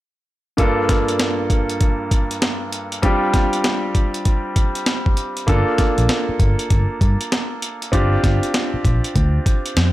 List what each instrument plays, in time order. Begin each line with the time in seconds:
0.57 grand piano G2 A#3 D4 F4 A4, kick, closed hi-hat
0.89 kick, snare, closed hi-hat
1.08 closed hi-hat
1.20 snare, closed hi-hat
1.50 kick, closed hi-hat
1.69 closed hi-hat
1.81 kick, closed hi-hat
2.11 kick, closed hi-hat
2.31 closed hi-hat
2.42 snare, closed hi-hat
2.72 closed hi-hat
2.92 closed hi-hat
3.02 grand piano G3 C4 D4 F4 G4, kick, closed hi-hat
3.34 kick, snare, closed hi-hat
3.53 closed hi-hat
3.64 snare, closed hi-hat
3.95 kick, closed hi-hat
4.14 closed hi-hat
4.25 kick, closed hi-hat
4.56 kick, closed hi-hat
4.75 closed hi-hat
4.86 snare, closed hi-hat
5.06 kick
5.17 closed hi-hat
5.37 closed hi-hat
5.47 fingered electric bass G1, grand piano A#3 D4 F4 A4, kick, closed hi-hat
5.78 kick, snare, closed hi-hat
5.98 fingered electric bass A#1, closed hi-hat
6.09 snare, closed hi-hat
6.29 muted fingered electric bass stroke
6.39 fingered electric bass G1, kick, closed hi-hat
6.59 closed hi-hat
6.70 fingered electric bass G1, kick, closed hi-hat
7.01 fingered electric bass G2, kick, closed hi-hat
7.21 closed hi-hat
7.32 snare, closed hi-hat
7.62 closed hi-hat
7.82 closed hi-hat
7.92 fingered electric bass G1, grand piano C4 D4 F4 G4, kick, closed hi-hat
8.24 fingered electric bass G1, kick, snare, closed hi-hat
8.43 closed hi-hat
8.54 snare, closed hi-hat
8.74 muted fingered electric bass stroke
8.85 fingered electric bass A#1, kick, closed hi-hat
9.04 closed hi-hat
9.16 fingered electric bass D2, kick, closed hi-hat
9.46 kick, closed hi-hat
9.66 closed hi-hat
9.77 fingered electric bass F2, snare, closed hi-hat